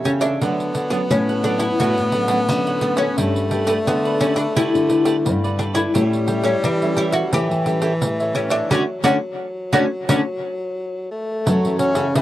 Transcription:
Already playing: nylon-string guitar E3 G3 C#4 E4
0.05 nylon-string guitar C#3, oud C#4, cavaquinho G4 A4 C#5 E5, pandeiro
0.21 oud D4, cavaquinho A4 C#5 E5, pandeiro
0.41 nylon-string guitar D3 F#3 A3, tenor saxophone B3, cavaquinho D4 A4 C#5 F#5, pandeiro
0.60 pandeiro
0.74 cavaquinho D4 A4 C#5 F#5, pandeiro
0.90 nylon-string guitar F#3 A3 C#4, oud B3, cavaquinho D4 A4 C#5 F#5, pandeiro
1.10 nylon-string guitar A2, oud C#4, pandeiro
1.29 cavaquinho A4 C#5 F#5, pandeiro
1.43 nylon-string guitar F#3 A3 C#4, cavaquinho D4 A4 C#5 F#5, oud D4, pandeiro
1.59 oud E4, cavaquinho A4 C#5 F#5, pandeiro
1.79 nylon-string guitar A2 D3, cavaquinho D4 A4 C#5 F#5, oud F#4, pandeiro
1.98 nylon-string guitar A2, pandeiro
2.12 nylon-string guitar F#3 A3 C#4, cavaquinho D4 A4 C#5 F#5, pandeiro
2.28 nylon-string guitar F#3 A3 C#4, cavaquinho D4 A4 C#5 F#5, pandeiro
2.49 nylon-string guitar A2 D3 F#3 A3 C#4, pandeiro
2.67 cavaquinho A4 C#5 F#5, pandeiro
2.81 nylon-string guitar F#3 A3 C#4, oud B3, cavaquinho D4 A4 C#5 F#5, pandeiro
2.97 oud C#4, cavaquinho A4 C#5 F#5, pandeiro
3.18 nylon-string guitar G2 G3 B3 D4 A4, tenor saxophone A3, cavaquinho G4 A4 B4, pandeiro
3.36 pandeiro
3.51 nylon-string guitar B3 D4, cavaquinho G4 A4 B4 D5, pandeiro
3.67 oud A3, nylon-string guitar B3 D4 A4, cavaquinho G4 A4 B4 D5, pandeiro
3.87 nylon-string guitar D3, oud B3, pandeiro
4.05 cavaquinho A4 B4 D5, pandeiro
4.20 nylon-string guitar B3 D4 A4, oud C#4, cavaquinho G4 A4 B4 D5, pandeiro
4.36 oud D4, cavaquinho A4 B4 D5, pandeiro
4.56 nylon-string guitar D3 G3, oud E4, cavaquinho G4 A4 B4 D5, pandeiro
4.75 nylon-string guitar D3, pandeiro
4.89 nylon-string guitar B3 D4 A4, cavaquinho G4 A4 B4 D5, pandeiro
5.05 nylon-string guitar B3 D4 A4, cavaquinho G4 A4 B4 D5, pandeiro
5.25 nylon-string guitar G2 D3 B3 D4 A4, pandeiro
5.44 cavaquinho A4 B4 D5, pandeiro
5.58 oud D4, cavaquinho G4 A4 B4 D5, pandeiro
5.74 oud E4, cavaquinho A4 B4 D5, pandeiro
5.94 nylon-string guitar A2 G3 C#4 E4, tenor saxophone G3, cavaquinho G4 A4 C#5 E5, pandeiro
6.13 pandeiro
6.27 nylon-string guitar G3 C#4 E4, cavaquinho G4 A4 C#5 E5, pandeiro
6.43 nylon-string guitar G3 C#4 E4, oud C#4, cavaquinho G4 A4 C#5 E5, pandeiro
6.64 nylon-string guitar E3, oud D4, pandeiro
6.82 nylon-string guitar G3 C#4 E4, cavaquinho A4 C#5 E5, pandeiro
6.96 nylon-string guitar G3 C#4 E4, oud E4, cavaquinho G4 A4 C#5 E5, pandeiro
7.12 oud F#4, cavaquinho A4 C#5 E5, pandeiro
7.33 nylon-string guitar A2 E3, tenor saxophone E3, cavaquinho G4 A4 C#5 E5, oud G4, pandeiro
7.51 nylon-string guitar E3, pandeiro
7.66 nylon-string guitar G3 C#4 E4, cavaquinho G4 A4 C#5 E5, pandeiro
7.82 cavaquinho G4 A4 C#5 E5, pandeiro
8.02 nylon-string guitar A2 E3 G3 C#4 E4, pandeiro
8.20 cavaquinho A4 C#5 E5, pandeiro
8.35 oud C#4, cavaquinho G4 A4 C#5 E5, pandeiro
8.50 oud D4, cavaquinho A4 C#5 E5, pandeiro
8.71 nylon-string guitar D3 A3 C#4 D4, tenor saxophone F#3, oud C#4 D4 F#4, cavaquinho A4 C#5 D5, pandeiro
9.04 nylon-string guitar D3 A3 C#4 D4, oud C#4 D4 F#4, cavaquinho A4 C#5 D5, pandeiro
9.73 nylon-string guitar D3 A3 C#4 D4, oud C#4 D4 F#4, cavaquinho A4 C#5 D5, pandeiro
10.08 nylon-string guitar D3 A3 C#4 D4, oud C#4 D4 F#4, cavaquinho A4 C#5 D5, pandeiro
11.11 tenor saxophone A3
11.46 nylon-string guitar F#2 E3 F#3 A3 C#4, cavaquinho F#4 A4 C#5 E5, pandeiro
11.65 nylon-string guitar E3 A3 C#4, pandeiro
11.79 tenor saxophone C#4, cavaquinho F#4 A4 C#5 E5, pandeiro
11.95 nylon-string guitar C#3, cavaquinho F#4 A4 C#5 E5, pandeiro
12.15 nylon-string guitar C#3 E3 A3 C#4, tenor saxophone E4, pandeiro

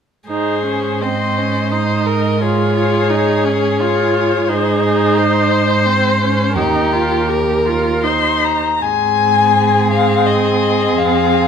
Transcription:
0.28 cello G#2, viola D#4, violin G#4 C5
0.65 viola C#4
1.02 viola C4, violin C5 D#5
1.38 viola C#4
1.72 viola D#4, violin C5 D#5
2.06 violin A#4
2.41 viola F4, violin G#4 C#5
2.76 viola F4
3.10 viola D#4
3.44 viola C#4
3.80 viola F4, violin C#5
4.49 cello G#2, viola D#4, violin G#4 C5
4.83 violin C5
5.18 violin C5
5.86 viola C4
6.22 viola C#4
6.57 cello D#2, viola D#4, violin G4 A#4
6.93 viola F4
7.28 viola G4, violin A#4
7.65 viola F4
8.03 viola D#4, violin C5 C6
8.44 violin A#5
8.82 cello G#2, viola C4, violin G#4 G#5
9.90 violin F5
10.26 violin D#5
10.98 cello F2, violin F5

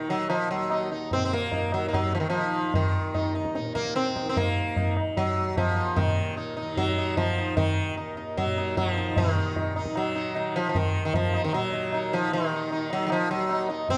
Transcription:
Already playing: tanpura D#2 A#2 D#3
0.09 sitar F#3, tabla na
0.30 sitar F3, tabla na
0.51 tanpura D#2, sitar F#3
0.70 sitar D#4, tabla na
0.92 sitar D#4
1.11 tanpura A#2, sitar C4, tabla tin, tabla ge
1.25 sitar C4
1.33 sitar A#3
1.52 sitar D#4, tabla tin, tabla ge
1.72 tanpura D#3, sitar F#3, tabla na
1.88 sitar A#3
1.93 sitar F#3, tabla na, tabla ge
2.13 sitar F3, tabla te
2.20 sitar D#3
2.30 sitar F3, tabla na
2.38 tanpura D#3
2.74 sitar D#3, tabla tin, tabla ge
2.99 tanpura D#2
3.14 sitar D#4, tabla tin, tabla ge
3.35 sitar D#4, tabla na
3.45 tabla ke
3.55 tanpura A#2, sitar D#4, tabla te
3.65 tabla te
3.75 sitar A#3, tabla ke
3.85 tabla te
3.96 sitar C4, tabla te
4.06 tabla te
4.16 sitar D#4, tabla ke
4.20 tanpura D#3
4.26 sitar C4, tabla te
4.37 sitar A#3, tabla tin, tabla ge
4.76 tanpura D#3, sitar D#4, tabla tin, tabla ge
4.97 tabla na
5.17 sitar F#3, tabla tin, tabla ge
5.41 tanpura D#2
5.57 sitar F3, tabla tin, tabla ge
5.76 sitar D#4
5.96 sitar D#3, tabla na, tabla ge
6.02 tanpura A#2
6.37 sitar D#4
6.57 sitar D#4
6.62 tanpura D#3
6.77 sitar F#3, tabla tin, tabla ge
6.98 sitar D#4
7.17 sitar F3, tabla tin, tabla ge
7.24 tanpura D#3
7.38 sitar D#4
7.57 sitar D#3, tabla na, tabla ge
7.84 tanpura D#2
7.97 sitar D#4
8.17 sitar D#4
8.37 sitar F#3, tabla tin, tabla ge
8.45 tanpura A#2
8.57 sitar D#4
8.77 sitar F#3, tabla tin, tabla ge
8.88 sitar F3
8.97 sitar D#4
9.06 tanpura D#3
9.16 tanpura A#2, sitar D#3 D#4, tabla tin, tabla ge
9.37 sitar D#4
9.56 tabla tin, tabla ge
9.76 tanpura D#3, sitar D#4, tabla na
9.86 tabla ke
9.96 sitar F#3, tabla na
10.16 sitar D#4
10.35 tanpura D#3, sitar D#4, tabla na
10.56 sitar F3
10.69 sitar F3
10.75 sitar D#3, tabla tin, tabla ge
10.96 tanpura D#2
11.05 sitar D#3
11.14 sitar F3, tabla tin, tabla ge
11.34 sitar D#4, tabla na
11.44 sitar D#3
11.53 tanpura A#2, sitar F#3, tabla na
11.73 sitar D#4
11.93 sitar D#4, tabla na
12.13 tanpura D#3, sitar F3
12.31 sitar D#3, tabla tin
12.53 sitar D#4
12.71 tanpura D#3, sitar D#4, tabla tin
12.90 sitar F#3, tabla na
13.07 sitar F#3, tabla na
13.12 sitar F3
13.31 tanpura D#2, sitar F#3
13.49 sitar D#4, tabla na
13.69 sitar D#4, tabla na
13.89 tanpura A#2, sitar C4, tabla tin, tabla ge

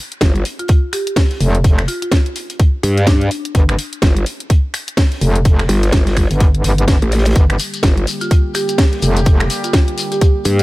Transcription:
0.12 closed hi-hat
0.21 wobble bass G1, kick, snare, closed hi-hat
0.36 closed hi-hat
0.45 closed hi-hat, open hi-hat
0.59 marimba F4, closed hi-hat
0.68 kick, closed hi-hat
0.93 marimba G4, finger snap, closed hi-hat, open hi-hat
1.07 closed hi-hat
1.16 kick, snare, closed hi-hat, open hi-hat
1.31 snare, closed hi-hat
1.40 wobble bass F1, closed hi-hat, open hi-hat
1.55 closed hi-hat
1.64 kick, closed hi-hat
1.78 finger snap, snare, closed hi-hat
1.88 marimba F4, closed hi-hat, open hi-hat
2.02 marimba F4, closed hi-hat
2.12 kick, snare, closed hi-hat
2.26 closed hi-hat
2.36 closed hi-hat, open hi-hat
2.50 closed hi-hat
2.60 kick, closed hi-hat
2.83 wobble bass G2, closed hi-hat, open hi-hat
2.97 snare, closed hi-hat
3.07 marimba D4, kick, snare, closed hi-hat
3.21 closed hi-hat
3.31 closed hi-hat, open hi-hat
3.45 closed hi-hat
3.55 wobble bass G1, kick, closed hi-hat
3.69 finger snap, closed hi-hat
3.79 closed hi-hat, open hi-hat
3.93 closed hi-hat
4.02 wobble bass G1, kick, snare, closed hi-hat
4.17 closed hi-hat
4.26 closed hi-hat, open hi-hat
4.40 closed hi-hat
4.50 kick, closed hi-hat
4.74 finger snap, closed hi-hat, open hi-hat
4.88 closed hi-hat
4.97 kick, snare, closed hi-hat, open hi-hat
5.12 snare, closed hi-hat
5.21 wobble bass F1, closed hi-hat, open hi-hat
5.36 closed hi-hat
5.45 kick, closed hi-hat
5.59 finger snap, snare, closed hi-hat
5.68 wobble bass G1, snare, open hi-hat
5.83 snare, closed hi-hat
5.92 wobble bass G1, kick, snare, closed hi-hat
6.07 snare, closed hi-hat, open hi-hat
6.17 finger snap, kick, snare, open hi-hat
6.31 wobble bass G1, closed hi-hat
6.40 kick, closed hi-hat
6.55 closed hi-hat
6.64 wobble bass G1, snare, closed hi-hat, open hi-hat
6.78 closed hi-hat
6.88 kick, snare, closed hi-hat
7.02 wobble bass A1, closed hi-hat
7.12 snare, closed hi-hat, open hi-hat
7.18 snare, closed hi-hat
7.25 snare, closed hi-hat
7.31 snare, closed hi-hat
7.35 wobble bass G1, analog synth pad D3 G3 A#3 G4, kick, closed hi-hat, shekere
7.50 finger snap, closed hi-hat
7.59 closed hi-hat, open hi-hat, shekere
7.74 closed hi-hat, shekere
7.83 wobble bass G1, kick, snare, closed hi-hat, shekere
7.97 closed hi-hat
8.07 closed hi-hat, open hi-hat, shekere
8.21 marimba F4, closed hi-hat, shekere
8.31 kick, closed hi-hat, shekere
8.55 marimba G4, finger snap, closed hi-hat, open hi-hat, shekere
8.68 closed hi-hat, shekere
8.78 kick, snare, closed hi-hat, open hi-hat, shekere
8.93 snare, closed hi-hat
9.02 wobble bass F1, closed hi-hat, open hi-hat, shekere
9.17 closed hi-hat, shekere
9.25 kick, closed hi-hat, shekere
9.40 finger snap, snare, closed hi-hat
9.50 closed hi-hat, open hi-hat, shekere
9.64 marimba F4, closed hi-hat, shekere
9.73 marimba F4, kick, snare, closed hi-hat, shekere
9.88 closed hi-hat
9.98 closed hi-hat, open hi-hat, shekere
10.12 marimba G4, closed hi-hat, shekere
10.21 marimba G4, kick, closed hi-hat, shekere
10.45 wobble bass G2, closed hi-hat, open hi-hat, shekere
10.59 snare, closed hi-hat, shekere

